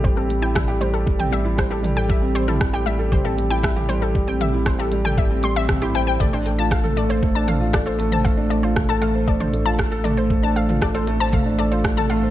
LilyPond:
<<
  \new Staff \with { instrumentName = "Synth arpeggio sound" } { \time 4/4 \key a \minor \tempo 4 = 117 c''16 a'16 r16 g''16 e''16 r16 c''16 a'16 r16 g''16 e''16 r16 c''16 a'16 r16 g''16 | e''16 r16 c''16 a'16 r16 g''16 e''16 r16 c''16 a'16 r16 g''16 e''16 r16 c''16 a'16 | r16 g''16 e''16 r16 c''16 a'16 r16 g''16 e''16 r16 c'''16 e''16 r16 g'16 g''16 g''16 | d''16 c''16 r16 a''16 f''16 r16 d''16 c''16 r16 a''16 f''16 r16 d''16 c''16 r16 a''16 |
f''16 r16 d''16 c''16 r16 a''16 f''16 r16 d''16 c''16 r16 a''16 f''16 r16 d''16 c''16 | r16 a''16 f''16 r16 d''16 c''16 r16 a''16 f''16 r16 d''16 c''16 r16 a''16 f''16 r16 | }
  \new Staff \with { instrumentName = "Felt piano" } { \time 4/4 \key a \minor g16 c'16 g16 e'16 g16 g'16 g16 a'16 g16 c'16 g16 e'16 g16 g'16 g16 a'16 | g16 c'16 g16 e'16 g16 g'16 g16 a'16 g16 c'16 g16 e'16 g16 g'16 g16 a'16 | g16 c'16 g16 e'16 g16 g'16 g16 a'16 g16 c'16 g16 c'16 c'16 e'16 c''16 c''16 | a16 d'16 a16 f'16 a16 a'16 a16 c''16 a16 d'16 a16 f'16 a16 a'16 a16 c''16 |
a16 d'16 a16 f'16 a16 a'16 a16 c''16 a16 d'16 a16 f'16 a16 a'16 a16 c''16 | a16 d'16 a16 f'16 a16 a'16 a16 c''16 a16 d'16 a16 f'16 r16 a'16 a16 c''16 | }
  \new Staff \with { instrumentName = "Sub bass" } { \clef bass \time 4/4 \key a \minor a,,1~ | a,,1~ | a,,1 | a,,1~ |
a,,1~ | a,,1 | }
  \new DrumStaff \with { instrumentName = "Drums" } \drummode { \time 4/4 bd8 hh8 <bd ss toml>8 hh8 bd16 toml16 hh8 <bd ss>8 <hh toml>8 | bd8 hh16 toml16 <bd ss>8 hh8 <bd toml>8 hh8 <bd ss>16 toml16 hh8 | bd8 <hh toml>8 <bd ss>8 hh16 toml16 bd8 hh8 <bd ss toml>8 hh8 | <bd toml>8 hh8 <bd ss>16 toml16 hh8 bd8 <hh toml>8 <bd ss>8 hh16 toml16 |
bd8 hh8 <bd ss toml>8 hh8 bd16 toml16 hh8 <bd ss>8 <hh toml>8 | bd8 hh16 toml16 <bd ss>8 hh8 <bd toml>8 hh8 <bd ss>16 toml16 hh8 | }
>>